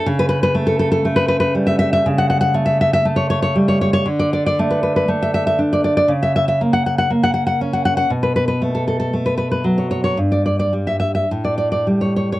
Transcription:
\new Staff \with { instrumentName = "Nylon-string guitar" } { \time 4/4 \key a \mixolydian \tempo 4 = 59 << { r32 b'32 b'32 b'32 r32 a'32 a'32 a'32 r32 b'32 b'32 b'32 r32 e''32 e''32 e''32 r32 fis''32 fis''32 fis''32 r32 e''32 e''32 e''32 r32 cis''32 cis''32 cis''32 r32 cis''32 cis''32 cis''32 | r32 d''32 d''32 d''32 r32 b'32 b'32 b'32 r32 e''32 e''32 e''32 r32 d''32 d''32 d''32 r32 e''32 e''32 e''32 r32 fis''32 fis''32 fis''32 r32 fis''32 fis''32 fis''32 r32 fis''32 fis''32 fis''32 | r32 b'32 b'32 b'32 r32 a'32 a'32 a'32 r32 b'32 b'32 b'32 r32 cis''32 cis''32 cis''32 r32 d''32 d''32 d''32 r32 e''32 e''32 e''32 r32 d''32 d''32 d''32 r32 cis''32 cis''32 cis''32 | } \\ { cis8 a8 a8 g8 cis8 a8 a8 g8 | d8 a8 a8 d'8 cis8 ais8 ais8 cis'8 | b,8 a8 a8 fis8 g,8 g8 a,8 g8 | } >> }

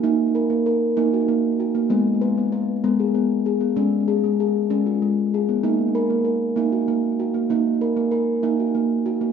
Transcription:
<<
  \new Staff \with { instrumentName = "Steel tongue drum" } { \time 6/8 \key ees \minor \tempo 4. = 64 ees'4. ees'8 r4 | aes4. aes8 r4 | des'4. des'8 r4 | ees'4. ees'8 r4 |
ees'4. ees'8 r4 | }
  \new Staff \with { instrumentName = "Steel tongue drum" } { \time 6/8 \key ees \minor bes8 bes'16 bes16 bes'8 bes16 ges'16 bes8 ges'16 bes16 | ces'8 ces''16 ces'16 ces''8 ces'16 aes'16 ces'8 aes'16 ces'16 | aes8 aes'16 aes16 aes'8 aes16 f'16 aes8 aes'16 ces'16 | bes8 bes'16 bes16 bes'8 bes16 ges'16 bes8 ges'16 bes16 |
bes8 bes'16 bes16 bes'8 bes16 ges'16 bes8 ges'16 bes16 | }
>>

